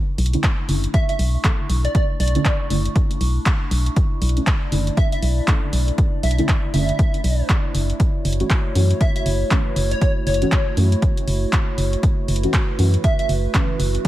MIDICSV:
0, 0, Header, 1, 6, 480
1, 0, Start_track
1, 0, Key_signature, 2, "minor"
1, 0, Tempo, 504202
1, 1854, Time_signature, 4, 2, 24, 8
1, 13402, End_track
2, 0, Start_track
2, 0, Title_t, "Digital synth lead"
2, 0, Program_c, 0, 84
2, 894, Note_on_c, 0, 76, 87
2, 986, Note_off_c, 0, 76, 0
2, 1038, Note_on_c, 0, 76, 77
2, 1100, Note_off_c, 0, 76, 0
2, 1758, Note_on_c, 0, 74, 85
2, 1820, Note_off_c, 0, 74, 0
2, 1854, Note_on_c, 0, 74, 76
2, 1946, Note_off_c, 0, 74, 0
2, 2094, Note_on_c, 0, 74, 96
2, 2574, Note_off_c, 0, 74, 0
2, 4735, Note_on_c, 0, 76, 88
2, 4827, Note_off_c, 0, 76, 0
2, 4879, Note_on_c, 0, 76, 75
2, 4940, Note_off_c, 0, 76, 0
2, 5934, Note_on_c, 0, 76, 89
2, 6099, Note_off_c, 0, 76, 0
2, 6414, Note_on_c, 0, 76, 96
2, 7096, Note_off_c, 0, 76, 0
2, 8574, Note_on_c, 0, 76, 86
2, 8666, Note_off_c, 0, 76, 0
2, 8718, Note_on_c, 0, 76, 77
2, 8779, Note_off_c, 0, 76, 0
2, 9438, Note_on_c, 0, 73, 88
2, 9499, Note_off_c, 0, 73, 0
2, 9534, Note_on_c, 0, 73, 78
2, 9626, Note_off_c, 0, 73, 0
2, 9774, Note_on_c, 0, 73, 96
2, 10254, Note_off_c, 0, 73, 0
2, 12413, Note_on_c, 0, 76, 86
2, 12506, Note_off_c, 0, 76, 0
2, 12558, Note_on_c, 0, 76, 77
2, 12620, Note_off_c, 0, 76, 0
2, 13402, End_track
3, 0, Start_track
3, 0, Title_t, "Ambient pad"
3, 0, Program_c, 1, 92
3, 0, Note_on_c, 1, 57, 83
3, 0, Note_on_c, 1, 62, 75
3, 0, Note_on_c, 1, 64, 77
3, 0, Note_on_c, 1, 85, 92
3, 3736, Note_off_c, 1, 85, 0
3, 3774, Note_on_c, 1, 74, 92
3, 7576, Note_off_c, 1, 62, 0
3, 7576, Note_off_c, 1, 74, 0
3, 7613, Note_on_c, 1, 66, 76
3, 7614, Note_on_c, 1, 73, 92
3, 11416, Note_off_c, 1, 73, 0
3, 11454, Note_on_c, 1, 71, 92
3, 13402, Note_off_c, 1, 57, 0
3, 13402, Note_off_c, 1, 64, 0
3, 13402, Note_off_c, 1, 66, 0
3, 13402, Note_off_c, 1, 71, 0
3, 13402, End_track
4, 0, Start_track
4, 0, Title_t, "Synth stab"
4, 0, Program_c, 2, 62
4, 317, Note_on_c, 2, 50, 88
4, 318, Note_on_c, 2, 57, 78
4, 319, Note_on_c, 2, 61, 79
4, 320, Note_on_c, 2, 64, 94
4, 431, Note_off_c, 2, 50, 0
4, 432, Note_off_c, 2, 57, 0
4, 432, Note_off_c, 2, 61, 0
4, 432, Note_off_c, 2, 64, 0
4, 653, Note_on_c, 2, 50, 75
4, 654, Note_on_c, 2, 57, 71
4, 655, Note_on_c, 2, 61, 70
4, 656, Note_on_c, 2, 64, 85
4, 809, Note_off_c, 2, 50, 0
4, 810, Note_off_c, 2, 57, 0
4, 810, Note_off_c, 2, 61, 0
4, 811, Note_off_c, 2, 64, 0
4, 1373, Note_on_c, 2, 50, 74
4, 1374, Note_on_c, 2, 57, 66
4, 1375, Note_on_c, 2, 61, 68
4, 1376, Note_on_c, 2, 69, 79
4, 1594, Note_off_c, 2, 50, 0
4, 1594, Note_off_c, 2, 57, 0
4, 1595, Note_off_c, 2, 61, 0
4, 1595, Note_off_c, 2, 69, 0
4, 2236, Note_on_c, 2, 50, 95
4, 2238, Note_on_c, 2, 57, 90
4, 2239, Note_on_c, 2, 61, 89
4, 2240, Note_on_c, 2, 64, 110
4, 2351, Note_off_c, 2, 50, 0
4, 2351, Note_off_c, 2, 57, 0
4, 2352, Note_off_c, 2, 61, 0
4, 2352, Note_off_c, 2, 64, 0
4, 2573, Note_on_c, 2, 50, 75
4, 2574, Note_on_c, 2, 57, 72
4, 2575, Note_on_c, 2, 61, 72
4, 2576, Note_on_c, 2, 64, 86
4, 2729, Note_off_c, 2, 50, 0
4, 2729, Note_off_c, 2, 57, 0
4, 2730, Note_off_c, 2, 61, 0
4, 2731, Note_off_c, 2, 64, 0
4, 4157, Note_on_c, 2, 50, 82
4, 4158, Note_on_c, 2, 57, 79
4, 4159, Note_on_c, 2, 61, 79
4, 4160, Note_on_c, 2, 64, 96
4, 4271, Note_off_c, 2, 50, 0
4, 4271, Note_off_c, 2, 57, 0
4, 4272, Note_off_c, 2, 61, 0
4, 4272, Note_off_c, 2, 64, 0
4, 4492, Note_on_c, 2, 50, 77
4, 4494, Note_on_c, 2, 57, 73
4, 4495, Note_on_c, 2, 61, 73
4, 4496, Note_on_c, 2, 64, 86
4, 4649, Note_off_c, 2, 50, 0
4, 4649, Note_off_c, 2, 57, 0
4, 4650, Note_off_c, 2, 61, 0
4, 4651, Note_off_c, 2, 64, 0
4, 5213, Note_on_c, 2, 50, 72
4, 5214, Note_on_c, 2, 57, 68
4, 5215, Note_on_c, 2, 61, 68
4, 5216, Note_on_c, 2, 69, 81
4, 5434, Note_off_c, 2, 50, 0
4, 5434, Note_off_c, 2, 57, 0
4, 5435, Note_off_c, 2, 61, 0
4, 5435, Note_off_c, 2, 69, 0
4, 6076, Note_on_c, 2, 50, 95
4, 6078, Note_on_c, 2, 57, 88
4, 6079, Note_on_c, 2, 61, 89
4, 6080, Note_on_c, 2, 64, 110
4, 6191, Note_off_c, 2, 50, 0
4, 6191, Note_off_c, 2, 57, 0
4, 6192, Note_off_c, 2, 61, 0
4, 6192, Note_off_c, 2, 64, 0
4, 6413, Note_on_c, 2, 50, 79
4, 6414, Note_on_c, 2, 57, 73
4, 6415, Note_on_c, 2, 61, 69
4, 6416, Note_on_c, 2, 64, 83
4, 6569, Note_off_c, 2, 50, 0
4, 6569, Note_off_c, 2, 57, 0
4, 6570, Note_off_c, 2, 61, 0
4, 6571, Note_off_c, 2, 64, 0
4, 7997, Note_on_c, 2, 52, 87
4, 7998, Note_on_c, 2, 57, 78
4, 7999, Note_on_c, 2, 61, 78
4, 8000, Note_on_c, 2, 66, 95
4, 8111, Note_off_c, 2, 52, 0
4, 8111, Note_off_c, 2, 57, 0
4, 8112, Note_off_c, 2, 61, 0
4, 8112, Note_off_c, 2, 66, 0
4, 8333, Note_on_c, 2, 52, 76
4, 8334, Note_on_c, 2, 57, 71
4, 8335, Note_on_c, 2, 61, 70
4, 8336, Note_on_c, 2, 66, 83
4, 8489, Note_off_c, 2, 52, 0
4, 8489, Note_off_c, 2, 57, 0
4, 8490, Note_off_c, 2, 61, 0
4, 8491, Note_off_c, 2, 66, 0
4, 9052, Note_on_c, 2, 52, 73
4, 9053, Note_on_c, 2, 57, 69
4, 9054, Note_on_c, 2, 61, 68
4, 9056, Note_on_c, 2, 71, 81
4, 9273, Note_off_c, 2, 52, 0
4, 9274, Note_off_c, 2, 57, 0
4, 9274, Note_off_c, 2, 61, 0
4, 9275, Note_off_c, 2, 71, 0
4, 9916, Note_on_c, 2, 52, 97
4, 9917, Note_on_c, 2, 57, 91
4, 9918, Note_on_c, 2, 61, 90
4, 9920, Note_on_c, 2, 66, 107
4, 10031, Note_off_c, 2, 52, 0
4, 10031, Note_off_c, 2, 57, 0
4, 10032, Note_off_c, 2, 61, 0
4, 10032, Note_off_c, 2, 66, 0
4, 10253, Note_on_c, 2, 52, 76
4, 10254, Note_on_c, 2, 57, 70
4, 10255, Note_on_c, 2, 61, 68
4, 10256, Note_on_c, 2, 66, 88
4, 10409, Note_off_c, 2, 52, 0
4, 10410, Note_off_c, 2, 57, 0
4, 10410, Note_off_c, 2, 61, 0
4, 10411, Note_off_c, 2, 66, 0
4, 11836, Note_on_c, 2, 52, 83
4, 11838, Note_on_c, 2, 57, 80
4, 11839, Note_on_c, 2, 61, 79
4, 11840, Note_on_c, 2, 66, 93
4, 11951, Note_off_c, 2, 52, 0
4, 11951, Note_off_c, 2, 57, 0
4, 11952, Note_off_c, 2, 61, 0
4, 11952, Note_off_c, 2, 66, 0
4, 12173, Note_on_c, 2, 52, 78
4, 12174, Note_on_c, 2, 57, 72
4, 12175, Note_on_c, 2, 61, 70
4, 12176, Note_on_c, 2, 66, 86
4, 12329, Note_off_c, 2, 52, 0
4, 12329, Note_off_c, 2, 57, 0
4, 12330, Note_off_c, 2, 61, 0
4, 12331, Note_off_c, 2, 66, 0
4, 12893, Note_on_c, 2, 52, 75
4, 12894, Note_on_c, 2, 57, 66
4, 12895, Note_on_c, 2, 61, 65
4, 12896, Note_on_c, 2, 71, 81
4, 13114, Note_off_c, 2, 52, 0
4, 13114, Note_off_c, 2, 57, 0
4, 13115, Note_off_c, 2, 61, 0
4, 13115, Note_off_c, 2, 71, 0
4, 13402, End_track
5, 0, Start_track
5, 0, Title_t, "FM bass"
5, 0, Program_c, 3, 39
5, 174, Note_on_c, 3, 35, 99
5, 343, Note_off_c, 3, 35, 0
5, 655, Note_on_c, 3, 30, 87
5, 823, Note_off_c, 3, 30, 0
5, 1134, Note_on_c, 3, 35, 86
5, 1303, Note_off_c, 3, 35, 0
5, 1614, Note_on_c, 3, 35, 87
5, 1783, Note_off_c, 3, 35, 0
5, 2094, Note_on_c, 3, 35, 99
5, 2263, Note_off_c, 3, 35, 0
5, 2574, Note_on_c, 3, 30, 83
5, 2743, Note_off_c, 3, 30, 0
5, 3054, Note_on_c, 3, 35, 86
5, 3223, Note_off_c, 3, 35, 0
5, 3534, Note_on_c, 3, 35, 86
5, 3703, Note_off_c, 3, 35, 0
5, 4014, Note_on_c, 3, 35, 99
5, 4183, Note_off_c, 3, 35, 0
5, 4494, Note_on_c, 3, 30, 86
5, 4663, Note_off_c, 3, 30, 0
5, 4974, Note_on_c, 3, 35, 90
5, 5143, Note_off_c, 3, 35, 0
5, 5454, Note_on_c, 3, 35, 84
5, 5623, Note_off_c, 3, 35, 0
5, 5934, Note_on_c, 3, 35, 99
5, 6103, Note_off_c, 3, 35, 0
5, 6414, Note_on_c, 3, 30, 86
5, 6583, Note_off_c, 3, 30, 0
5, 6894, Note_on_c, 3, 35, 95
5, 7063, Note_off_c, 3, 35, 0
5, 7374, Note_on_c, 3, 30, 87
5, 7543, Note_off_c, 3, 30, 0
5, 7854, Note_on_c, 3, 30, 101
5, 8023, Note_off_c, 3, 30, 0
5, 8334, Note_on_c, 3, 42, 83
5, 8503, Note_off_c, 3, 42, 0
5, 8814, Note_on_c, 3, 30, 89
5, 8983, Note_off_c, 3, 30, 0
5, 9294, Note_on_c, 3, 30, 85
5, 9463, Note_off_c, 3, 30, 0
5, 9774, Note_on_c, 3, 30, 96
5, 9943, Note_off_c, 3, 30, 0
5, 10254, Note_on_c, 3, 42, 87
5, 10423, Note_off_c, 3, 42, 0
5, 10734, Note_on_c, 3, 30, 87
5, 10903, Note_off_c, 3, 30, 0
5, 11214, Note_on_c, 3, 30, 88
5, 11383, Note_off_c, 3, 30, 0
5, 11694, Note_on_c, 3, 30, 102
5, 11863, Note_off_c, 3, 30, 0
5, 12174, Note_on_c, 3, 42, 86
5, 12343, Note_off_c, 3, 42, 0
5, 12654, Note_on_c, 3, 30, 86
5, 12823, Note_off_c, 3, 30, 0
5, 13134, Note_on_c, 3, 30, 88
5, 13303, Note_off_c, 3, 30, 0
5, 13402, End_track
6, 0, Start_track
6, 0, Title_t, "Drums"
6, 175, Note_on_c, 9, 46, 100
6, 247, Note_on_c, 9, 42, 65
6, 270, Note_off_c, 9, 46, 0
6, 318, Note_off_c, 9, 42, 0
6, 318, Note_on_c, 9, 42, 53
6, 414, Note_off_c, 9, 42, 0
6, 414, Note_on_c, 9, 36, 101
6, 415, Note_on_c, 9, 39, 113
6, 415, Note_on_c, 9, 42, 65
6, 509, Note_off_c, 9, 36, 0
6, 510, Note_off_c, 9, 39, 0
6, 510, Note_off_c, 9, 42, 0
6, 654, Note_on_c, 9, 46, 100
6, 750, Note_off_c, 9, 46, 0
6, 798, Note_on_c, 9, 42, 56
6, 893, Note_off_c, 9, 42, 0
6, 894, Note_on_c, 9, 36, 120
6, 894, Note_on_c, 9, 42, 64
6, 989, Note_off_c, 9, 36, 0
6, 990, Note_off_c, 9, 42, 0
6, 1038, Note_on_c, 9, 42, 55
6, 1134, Note_off_c, 9, 42, 0
6, 1134, Note_on_c, 9, 46, 99
6, 1230, Note_off_c, 9, 46, 0
6, 1374, Note_on_c, 9, 36, 102
6, 1374, Note_on_c, 9, 42, 68
6, 1375, Note_on_c, 9, 39, 123
6, 1469, Note_off_c, 9, 36, 0
6, 1470, Note_off_c, 9, 39, 0
6, 1470, Note_off_c, 9, 42, 0
6, 1614, Note_on_c, 9, 46, 101
6, 1710, Note_off_c, 9, 46, 0
6, 1758, Note_on_c, 9, 42, 54
6, 1854, Note_off_c, 9, 42, 0
6, 1854, Note_on_c, 9, 36, 120
6, 1854, Note_on_c, 9, 42, 67
6, 1949, Note_off_c, 9, 36, 0
6, 1950, Note_off_c, 9, 42, 0
6, 2094, Note_on_c, 9, 46, 103
6, 2167, Note_on_c, 9, 42, 62
6, 2190, Note_off_c, 9, 46, 0
6, 2238, Note_off_c, 9, 42, 0
6, 2238, Note_on_c, 9, 42, 54
6, 2334, Note_off_c, 9, 42, 0
6, 2334, Note_on_c, 9, 36, 107
6, 2334, Note_on_c, 9, 42, 61
6, 2335, Note_on_c, 9, 39, 117
6, 2429, Note_off_c, 9, 36, 0
6, 2430, Note_off_c, 9, 39, 0
6, 2430, Note_off_c, 9, 42, 0
6, 2574, Note_on_c, 9, 46, 103
6, 2670, Note_off_c, 9, 46, 0
6, 2718, Note_on_c, 9, 42, 53
6, 2813, Note_off_c, 9, 42, 0
6, 2814, Note_on_c, 9, 36, 126
6, 2814, Note_on_c, 9, 42, 64
6, 2909, Note_off_c, 9, 36, 0
6, 2910, Note_off_c, 9, 42, 0
6, 2958, Note_on_c, 9, 42, 53
6, 3053, Note_off_c, 9, 42, 0
6, 3054, Note_on_c, 9, 46, 103
6, 3149, Note_off_c, 9, 46, 0
6, 3294, Note_on_c, 9, 36, 108
6, 3294, Note_on_c, 9, 42, 66
6, 3295, Note_on_c, 9, 39, 125
6, 3389, Note_off_c, 9, 36, 0
6, 3390, Note_off_c, 9, 39, 0
6, 3390, Note_off_c, 9, 42, 0
6, 3534, Note_on_c, 9, 46, 104
6, 3630, Note_off_c, 9, 46, 0
6, 3678, Note_on_c, 9, 42, 54
6, 3774, Note_off_c, 9, 42, 0
6, 3774, Note_on_c, 9, 36, 124
6, 3774, Note_on_c, 9, 42, 63
6, 3869, Note_off_c, 9, 36, 0
6, 3870, Note_off_c, 9, 42, 0
6, 4014, Note_on_c, 9, 46, 104
6, 4086, Note_on_c, 9, 42, 60
6, 4109, Note_off_c, 9, 46, 0
6, 4158, Note_off_c, 9, 42, 0
6, 4158, Note_on_c, 9, 42, 51
6, 4253, Note_off_c, 9, 42, 0
6, 4254, Note_on_c, 9, 36, 106
6, 4254, Note_on_c, 9, 42, 59
6, 4255, Note_on_c, 9, 39, 112
6, 4349, Note_off_c, 9, 36, 0
6, 4350, Note_off_c, 9, 39, 0
6, 4350, Note_off_c, 9, 42, 0
6, 4494, Note_on_c, 9, 46, 105
6, 4589, Note_off_c, 9, 46, 0
6, 4638, Note_on_c, 9, 42, 52
6, 4733, Note_off_c, 9, 42, 0
6, 4734, Note_on_c, 9, 36, 122
6, 4734, Note_on_c, 9, 42, 61
6, 4829, Note_off_c, 9, 36, 0
6, 4829, Note_off_c, 9, 42, 0
6, 4878, Note_on_c, 9, 42, 53
6, 4973, Note_off_c, 9, 42, 0
6, 4974, Note_on_c, 9, 46, 102
6, 5069, Note_off_c, 9, 46, 0
6, 5214, Note_on_c, 9, 36, 112
6, 5214, Note_on_c, 9, 42, 66
6, 5215, Note_on_c, 9, 39, 123
6, 5309, Note_off_c, 9, 36, 0
6, 5310, Note_off_c, 9, 39, 0
6, 5310, Note_off_c, 9, 42, 0
6, 5454, Note_on_c, 9, 46, 109
6, 5549, Note_off_c, 9, 46, 0
6, 5598, Note_on_c, 9, 42, 48
6, 5693, Note_off_c, 9, 42, 0
6, 5694, Note_on_c, 9, 36, 121
6, 5694, Note_on_c, 9, 42, 61
6, 5789, Note_off_c, 9, 36, 0
6, 5789, Note_off_c, 9, 42, 0
6, 5934, Note_on_c, 9, 46, 108
6, 6006, Note_on_c, 9, 42, 59
6, 6029, Note_off_c, 9, 46, 0
6, 6078, Note_off_c, 9, 42, 0
6, 6078, Note_on_c, 9, 42, 51
6, 6173, Note_off_c, 9, 42, 0
6, 6174, Note_on_c, 9, 36, 107
6, 6174, Note_on_c, 9, 42, 59
6, 6175, Note_on_c, 9, 39, 108
6, 6269, Note_off_c, 9, 36, 0
6, 6270, Note_off_c, 9, 39, 0
6, 6270, Note_off_c, 9, 42, 0
6, 6414, Note_on_c, 9, 46, 101
6, 6510, Note_off_c, 9, 46, 0
6, 6558, Note_on_c, 9, 42, 51
6, 6653, Note_off_c, 9, 42, 0
6, 6654, Note_on_c, 9, 36, 119
6, 6654, Note_on_c, 9, 42, 62
6, 6749, Note_off_c, 9, 36, 0
6, 6750, Note_off_c, 9, 42, 0
6, 6798, Note_on_c, 9, 42, 51
6, 6894, Note_off_c, 9, 42, 0
6, 6894, Note_on_c, 9, 46, 103
6, 6989, Note_off_c, 9, 46, 0
6, 7134, Note_on_c, 9, 36, 109
6, 7134, Note_on_c, 9, 42, 63
6, 7135, Note_on_c, 9, 39, 112
6, 7229, Note_off_c, 9, 36, 0
6, 7230, Note_off_c, 9, 39, 0
6, 7230, Note_off_c, 9, 42, 0
6, 7374, Note_on_c, 9, 46, 103
6, 7469, Note_off_c, 9, 46, 0
6, 7518, Note_on_c, 9, 42, 47
6, 7613, Note_off_c, 9, 42, 0
6, 7614, Note_on_c, 9, 36, 117
6, 7614, Note_on_c, 9, 42, 61
6, 7709, Note_off_c, 9, 36, 0
6, 7709, Note_off_c, 9, 42, 0
6, 7854, Note_on_c, 9, 46, 104
6, 7926, Note_on_c, 9, 42, 59
6, 7949, Note_off_c, 9, 46, 0
6, 7998, Note_off_c, 9, 42, 0
6, 7998, Note_on_c, 9, 42, 50
6, 8094, Note_off_c, 9, 42, 0
6, 8094, Note_on_c, 9, 36, 106
6, 8094, Note_on_c, 9, 42, 57
6, 8095, Note_on_c, 9, 39, 106
6, 8189, Note_off_c, 9, 36, 0
6, 8190, Note_off_c, 9, 39, 0
6, 8190, Note_off_c, 9, 42, 0
6, 8334, Note_on_c, 9, 46, 103
6, 8430, Note_off_c, 9, 46, 0
6, 8478, Note_on_c, 9, 42, 50
6, 8574, Note_off_c, 9, 42, 0
6, 8574, Note_on_c, 9, 36, 118
6, 8574, Note_on_c, 9, 42, 59
6, 8669, Note_off_c, 9, 36, 0
6, 8670, Note_off_c, 9, 42, 0
6, 8718, Note_on_c, 9, 42, 52
6, 8813, Note_off_c, 9, 42, 0
6, 8814, Note_on_c, 9, 46, 105
6, 8909, Note_off_c, 9, 46, 0
6, 9054, Note_on_c, 9, 36, 102
6, 9054, Note_on_c, 9, 42, 63
6, 9055, Note_on_c, 9, 39, 116
6, 9149, Note_off_c, 9, 36, 0
6, 9149, Note_off_c, 9, 42, 0
6, 9150, Note_off_c, 9, 39, 0
6, 9294, Note_on_c, 9, 46, 101
6, 9389, Note_off_c, 9, 46, 0
6, 9438, Note_on_c, 9, 42, 50
6, 9533, Note_off_c, 9, 42, 0
6, 9534, Note_on_c, 9, 36, 113
6, 9534, Note_on_c, 9, 42, 63
6, 9629, Note_off_c, 9, 36, 0
6, 9630, Note_off_c, 9, 42, 0
6, 9774, Note_on_c, 9, 46, 97
6, 9846, Note_on_c, 9, 42, 61
6, 9870, Note_off_c, 9, 46, 0
6, 9918, Note_off_c, 9, 42, 0
6, 9918, Note_on_c, 9, 42, 50
6, 10013, Note_off_c, 9, 42, 0
6, 10014, Note_on_c, 9, 36, 99
6, 10014, Note_on_c, 9, 42, 61
6, 10015, Note_on_c, 9, 39, 105
6, 10109, Note_off_c, 9, 36, 0
6, 10109, Note_off_c, 9, 42, 0
6, 10110, Note_off_c, 9, 39, 0
6, 10254, Note_on_c, 9, 46, 96
6, 10350, Note_off_c, 9, 46, 0
6, 10398, Note_on_c, 9, 42, 52
6, 10494, Note_off_c, 9, 42, 0
6, 10494, Note_on_c, 9, 36, 115
6, 10494, Note_on_c, 9, 42, 62
6, 10589, Note_off_c, 9, 36, 0
6, 10590, Note_off_c, 9, 42, 0
6, 10638, Note_on_c, 9, 42, 53
6, 10734, Note_off_c, 9, 42, 0
6, 10734, Note_on_c, 9, 46, 99
6, 10830, Note_off_c, 9, 46, 0
6, 10974, Note_on_c, 9, 36, 101
6, 10975, Note_on_c, 9, 39, 115
6, 10975, Note_on_c, 9, 42, 65
6, 11069, Note_off_c, 9, 36, 0
6, 11070, Note_off_c, 9, 39, 0
6, 11070, Note_off_c, 9, 42, 0
6, 11214, Note_on_c, 9, 46, 97
6, 11309, Note_off_c, 9, 46, 0
6, 11358, Note_on_c, 9, 42, 50
6, 11454, Note_off_c, 9, 42, 0
6, 11454, Note_on_c, 9, 36, 114
6, 11454, Note_on_c, 9, 42, 66
6, 11549, Note_off_c, 9, 36, 0
6, 11550, Note_off_c, 9, 42, 0
6, 11694, Note_on_c, 9, 46, 97
6, 11766, Note_on_c, 9, 42, 63
6, 11789, Note_off_c, 9, 46, 0
6, 11838, Note_off_c, 9, 42, 0
6, 11838, Note_on_c, 9, 42, 55
6, 11933, Note_off_c, 9, 42, 0
6, 11934, Note_on_c, 9, 36, 98
6, 11934, Note_on_c, 9, 42, 64
6, 11935, Note_on_c, 9, 39, 109
6, 12029, Note_off_c, 9, 36, 0
6, 12029, Note_off_c, 9, 42, 0
6, 12030, Note_off_c, 9, 39, 0
6, 12174, Note_on_c, 9, 46, 96
6, 12269, Note_off_c, 9, 46, 0
6, 12318, Note_on_c, 9, 42, 54
6, 12413, Note_off_c, 9, 42, 0
6, 12414, Note_on_c, 9, 36, 116
6, 12414, Note_on_c, 9, 42, 65
6, 12509, Note_off_c, 9, 36, 0
6, 12509, Note_off_c, 9, 42, 0
6, 12558, Note_on_c, 9, 42, 54
6, 12653, Note_off_c, 9, 42, 0
6, 12654, Note_on_c, 9, 46, 96
6, 12749, Note_off_c, 9, 46, 0
6, 12894, Note_on_c, 9, 36, 100
6, 12894, Note_on_c, 9, 42, 68
6, 12895, Note_on_c, 9, 39, 114
6, 12989, Note_off_c, 9, 36, 0
6, 12989, Note_off_c, 9, 42, 0
6, 12990, Note_off_c, 9, 39, 0
6, 13134, Note_on_c, 9, 46, 99
6, 13229, Note_off_c, 9, 46, 0
6, 13278, Note_on_c, 9, 42, 52
6, 13373, Note_off_c, 9, 42, 0
6, 13402, End_track
0, 0, End_of_file